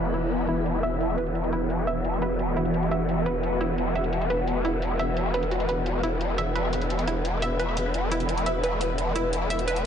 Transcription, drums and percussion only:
0.05 closed hi-hat soft
0.14 closed hi-hat medium
0.31 closed hi-hat medium
0.48 closed hi-hat medium
0.66 closed hi-hat medium
0.83 closed hi-hat loud
1.01 closed hi-hat medium
1.18 closed hi-hat medium
1.26 closed hi-hat soft
1.35 closed hi-hat medium
1.44 closed hi-hat soft
1.52 closed hi-hat medium
1.70 closed hi-hat medium
1.87 closed hi-hat medium
2.05 closed hi-hat medium
2.22 closed hi-hat medium
2.39 closed hi-hat medium
2.57 closed hi-hat medium
2.65 closed hi-hat soft
2.74 closed hi-hat medium
2.83 closed hi-hat soft
2.91 closed hi-hat medium
3.09 closed hi-hat medium
3.26 closed hi-hat medium
3.43 closed hi-hat medium
3.61 closed hi-hat medium
3.78 closed hi-hat medium
3.95 closed hi-hat medium
4.04 closed hi-hat soft
4.13 closed hi-hat medium
4.21 closed hi-hat soft
4.30 closed hi-hat medium
4.47 closed hi-hat medium
4.65 closed hi-hat medium
4.82 closed hi-hat medium
4.99 closed hi-hat medium
5.17 closed hi-hat medium
5.34 closed hi-hat medium
5.43 closed hi-hat soft
5.51 closed hi-hat medium
5.60 closed hi-hat soft
5.69 closed hi-hat medium
5.86 closed hi-hat medium
6.03 closed hi-hat medium
6.21 closed hi-hat medium
6.38 closed hi-hat medium
6.56 closed hi-hat medium
6.73 closed hi-hat medium
6.82 closed hi-hat soft
6.90 closed hi-hat medium
6.99 closed hi-hat soft
7.08 closed hi-hat medium
7.25 closed hi-hat medium
7.42 closed hi-hat medium
7.60 closed hi-hat medium
7.77 closed hi-hat loud
7.94 closed hi-hat medium
8.12 closed hi-hat medium
8.20 closed hi-hat soft
8.29 closed hi-hat medium
8.38 closed hi-hat soft
8.46 closed hi-hat medium
8.64 closed hi-hat medium
8.81 closed hi-hat medium
8.98 closed hi-hat medium
9.16 closed hi-hat medium
9.33 closed hi-hat medium
9.50 closed hi-hat medium
9.59 closed hi-hat soft
9.68 closed hi-hat medium
9.76 closed hi-hat soft

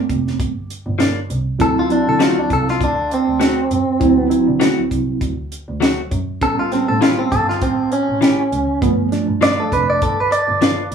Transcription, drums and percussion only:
0.10 kick medium
0.10 closed hi-hat medium
0.27 snare soft
0.40 kick loud
0.40 closed hi-hat medium
0.70 closed hi-hat medium
1.00 snare loud
1.00 closed hi-hat medium
1.30 closed hi-hat medium
1.60 kick loud
1.60 closed hi-hat medium
1.90 closed hi-hat soft
2.20 snare loud
2.20 closed hi-hat medium
2.50 kick medium
2.50 closed hi-hat medium
2.68 snare soft
2.81 kick loud
2.81 closed hi-hat medium
3.11 closed hi-hat medium
3.41 snare loud
3.41 closed hi-hat medium
3.71 closed hi-hat medium
4.01 kick loud
4.01 closed hi-hat medium
4.31 closed hi-hat medium
4.61 snare loud
4.61 closed hi-hat medium
4.91 kick medium
4.91 closed hi-hat medium
5.21 kick loud
5.21 closed hi-hat medium
5.52 closed hi-hat medium
5.82 snare loud
5.82 closed hi-hat medium
6.11 kick medium
6.11 closed hi-hat medium
6.42 kick loud
6.42 closed hi-hat medium
6.72 snare soft
6.72 closed hi-hat medium
7.02 snare loud
7.02 closed hi-hat medium
7.32 kick medium
7.32 closed hi-hat medium
7.50 snare soft
7.61 kick loud
7.61 closed hi-hat medium
7.92 closed hi-hat medium
8.22 snare loud
8.22 closed hi-hat medium
8.52 closed hi-hat medium
8.82 kick loud
8.82 closed hi-hat medium
9.12 snare soft
9.12 closed hi-hat medium
9.42 snare loud
9.42 closed hi-hat medium
9.72 kick medium
9.72 closed hi-hat medium
10.02 kick loud
10.02 closed hi-hat medium
10.32 closed hi-hat medium
10.62 snare loud
10.62 closed hi-hat medium
10.92 closed hi-hat medium

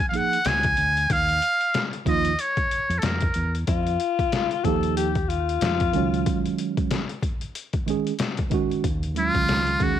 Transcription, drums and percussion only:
0.14 closed hi-hat medium
0.33 closed hi-hat medium
0.45 snare loud
0.45 closed hi-hat loud
0.63 kick medium
0.63 closed hi-hat medium
0.77 closed hi-hat medium
0.97 closed hi-hat soft
1.10 kick loud
1.10 closed hi-hat loud
1.29 closed hi-hat medium
1.42 closed hi-hat medium
1.61 closed hi-hat soft
1.74 snare loud
1.74 closed hi-hat medium
1.93 closed hi-hat soft
2.06 kick medium
2.06 closed hi-hat medium
2.25 closed hi-hat medium
2.39 closed hi-hat loud
2.57 kick medium
2.57 closed hi-hat soft
2.71 closed hi-hat medium
2.90 closed hi-hat medium
3.02 snare loud
3.02 closed hi-hat loud
3.21 kick medium
3.21 closed hi-hat medium
3.34 closed hi-hat medium
3.55 closed hi-hat soft
3.67 kick loud
3.67 closed hi-hat loud
3.87 closed hi-hat soft
4.00 closed hi-hat medium
4.19 kick medium
4.19 closed hi-hat soft
4.32 snare loud
4.32 closed hi-hat medium
4.51 closed hi-hat soft
4.64 kick medium
4.64 closed hi-hat medium
4.83 closed hi-hat medium
4.97 closed hi-hat loud
5.15 kick medium
5.15 closed hi-hat soft
5.30 closed hi-hat medium
5.49 closed hi-hat medium
5.61 snare loud
5.61 closed hi-hat loud
5.80 kick medium
5.80 closed hi-hat medium
5.93 closed hi-hat medium
6.14 closed hi-hat soft
6.26 kick loud
6.26 closed hi-hat loud
6.45 closed hi-hat medium
6.58 closed hi-hat medium
6.77 kick medium
6.77 closed hi-hat soft
6.91 snare loud
6.91 closed hi-hat medium
7.09 closed hi-hat soft
7.23 kick medium
7.23 closed hi-hat medium
7.41 closed hi-hat medium
7.55 closed hi-hat loud
7.73 kick medium
7.73 closed hi-hat soft
7.88 closed hi-hat medium
8.07 closed hi-hat medium
8.19 snare loud
8.19 closed hi-hat loud
8.37 kick medium
8.37 closed hi-hat medium
8.51 kick loud
8.51 closed hi-hat medium
8.71 closed hi-hat soft
8.84 kick loud
8.84 closed hi-hat medium
9.03 closed hi-hat medium
9.16 closed hi-hat medium
9.35 kick medium
9.35 closed hi-hat soft
9.48 snare loud
9.48 closed hi-hat medium
9.67 closed hi-hat soft
9.80 kick loud
9.80 closed hi-hat medium

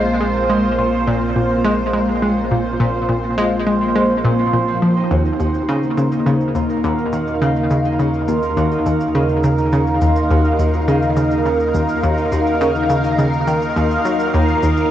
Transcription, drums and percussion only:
5.11 shaker soft
5.25 shaker soft
5.40 percussion blips medium
5.40 shaker medium
5.54 shaker soft
5.69 shaker soft
5.83 shaker soft
5.98 shaker medium
6.12 percussion blips medium
6.12 shaker medium
6.26 shaker medium
6.41 shaker soft
6.55 shaker medium
6.70 shaker soft
6.84 shaker medium
6.98 shaker soft
7.13 shaker medium
7.27 shaker medium
7.42 shaker medium
7.56 shaker soft
7.71 percussion blips medium
7.71 shaker medium
7.85 percussion blips soft
7.85 shaker medium
7.99 shaker soft
8.14 shaker soft
8.28 shaker medium
8.43 percussion blips medium
8.43 shaker medium
8.57 shaker medium
8.72 shaker soft
8.86 shaker medium
9.00 shaker medium
9.15 shaker medium
9.29 shaker soft
9.44 shaker loud
9.58 shaker medium
9.72 shaker medium
9.87 shaker soft
10.01 percussion blips medium
10.01 shaker medium
10.16 shaker medium
10.30 shaker medium
10.45 shaker soft
10.59 shaker medium
10.74 percussion blips soft
10.74 shaker medium
10.88 shaker medium
11.02 shaker soft
11.17 shaker medium
11.31 shaker medium
11.46 shaker medium
11.60 shaker soft
11.74 shaker loud
11.89 shaker medium
12.03 shaker medium
12.18 shaker soft
12.32 percussion blips soft
12.32 shaker medium
12.47 percussion blips soft
12.47 shaker soft
12.61 shaker medium
12.75 shaker soft
12.90 shaker medium
13.04 percussion blips soft
13.04 shaker medium
13.19 shaker medium
13.33 shaker soft
13.47 shaker medium
13.62 shaker medium
13.76 shaker medium
13.91 shaker soft
14.05 shaker medium
14.20 shaker medium
14.34 shaker medium
14.48 shaker soft
14.63 percussion blips soft
14.63 shaker medium
14.77 shaker soft

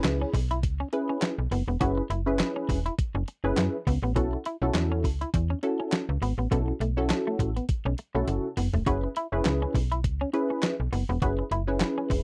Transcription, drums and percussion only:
0.04 snare loud
0.04 clap medium
0.04 closed hi-hat medium
0.34 kick medium
0.34 open hi-hat medium
0.51 closed hi-hat soft
0.63 kick loud
0.63 closed hi-hat medium
0.93 closed hi-hat soft
1.22 snare loud
1.22 clap medium
1.22 closed hi-hat medium
1.52 open hi-hat medium
1.81 kick loud
1.81 closed hi-hat medium
2.10 closed hi-hat medium
2.39 snare loud
2.39 clap loud
2.39 closed hi-hat medium
2.69 kick medium
2.69 open hi-hat medium
2.86 closed hi-hat soft
2.99 kick loud
2.99 closed hi-hat loud
3.28 closed hi-hat medium
3.57 snare loud
3.57 clap medium
3.57 closed hi-hat medium
3.87 kick medium
3.87 open hi-hat medium
4.16 kick loud
4.16 closed hi-hat medium
4.45 closed hi-hat medium
4.75 snare loud
4.75 clap medium
4.75 closed hi-hat medium
5.04 kick medium
5.04 open hi-hat medium
5.22 closed hi-hat medium
5.34 kick loud
5.34 closed hi-hat medium
5.63 closed hi-hat medium
5.92 snare loud
5.92 clap medium
5.92 closed hi-hat medium
6.22 open hi-hat medium
6.51 kick loud
6.51 closed hi-hat medium
6.81 closed hi-hat medium
7.10 snare loud
7.10 clap medium
7.10 closed hi-hat medium
7.39 kick medium
7.39 closed hi-hat medium
7.57 closed hi-hat soft
7.69 kick loud
7.69 closed hi-hat medium
7.98 closed hi-hat medium
8.28 closed hi-hat medium
8.28 high tom medium
8.57 mid tom medium
8.57 open hi-hat medium
8.74 floor tom loud
8.86 kick loud
8.86 closed hi-hat loud
9.16 closed hi-hat medium
9.45 snare loud
9.45 clap medium
9.45 closed hi-hat medium
9.74 kick medium
9.74 open hi-hat medium
9.92 closed hi-hat medium
10.04 kick loud
10.04 closed hi-hat medium
10.34 closed hi-hat medium
10.63 snare loud
10.63 clap medium
10.63 closed hi-hat medium
10.93 open hi-hat medium
11.22 kick loud
11.22 closed hi-hat medium
11.52 closed hi-hat medium
11.80 snare loud
11.80 clap medium
11.80 closed hi-hat medium
12.10 kick medium
12.10 open hi-hat medium

